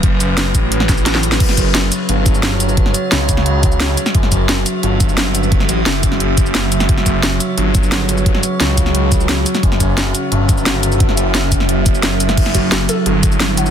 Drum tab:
CC |----------------|x---------------|----------------|----------------|
HH |x-x-x-x-x-x-x-x-|x-x-x-x-x-x-x-x-|x-x-x-x-x-x-x-x-|x-x-x-x-x-x-x-x-|
SH |--x-x-x---xx--xx|--x-x-x---xx--xx|--x-x-x---xx--xx|--x-x-x---xx--xx|
SD |----o----oo-oo-o|-o--o-------o---|-o--o--o----o--o|-o--o-------o---|
BD |o-----o---o-----|o-o-------o-----|o-----o---o-----|o-o-------o-----|

CC |----------------|----------------|----------------|----------------|
HH |x-x-x-x-x-x-x-x-|x-x-x-x-x-x-x-x-|x-x-x-x-x-x-x-x-|x-x-x-x-x-x-x-x-|
SH |--x-x-x---xx--xx|--x-x-x---xx--xx|--x-x-x---xx--xx|--x-x-x---xx--xx|
SD |-o--o--o----o--o|-o--o-------o---|-o--o--o----o--o|-o--o-------o---|
BD |o-----o---o-----|o-o-------o-----|o-----o---o-----|o-o-------o-----|

CC |----------------|x---------------|
HH |x-x-x-x-x-x-x-x-|x-x-x-x-x-x-x-x-|
SH |--x-x-x---xx--xx|--x-x-x---xx--xx|
SD |-o--o--o----o--o|-o--o-------o---|
BD |o-----o---o-----|o-o-------o-----|